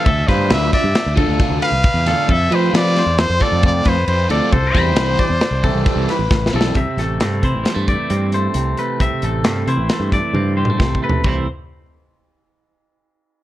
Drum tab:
CC |------------------------------|------------------------------|------------------------------|------------------------------|
RD |x--x--x--x--x--x--x--x--x--x--|x--x--x--x--x--x--x--x--x--x--|x--x--x--x--x--x--x--x--------|------------------------------|
HH |------------------------------|------------------------------|------------------------------|x--x--x--x--x--x--x--x--x--x--|
SD |---o--o-----o-----o--------o--|------o--o--o--o-----o--------|---o--o-----o-----o--o--o-o-o-|---o--o-----o-----------------|
T1 |------------------------------|------------------------------|------------------------------|------------------------------|
T2 |------------------------------|------------------------------|------------------------------|------------------------------|
FT |------------------------------|------------------------------|------------------------------|------------------------------|
BD |o--o-----o-----o--o-----o-----|o--------------o--o--o--------|o--o-----o-----o--o-----o-----|o--------o-----o--------------|

CC |------------------------------|x-----------------------------|
RD |------------------------------|------------------------------|
HH |x--x--x--x--x--x--------------|------------------------------|
SD |------o-----o-----------o-----|------------------------------|
T1 |------------------o-----------|------------------------------|
T2 |----------------------o-------|------------------------------|
FT |----------------------------o-|------------------------------|
BD |o--------------o--------o-o---|o-----------------------------|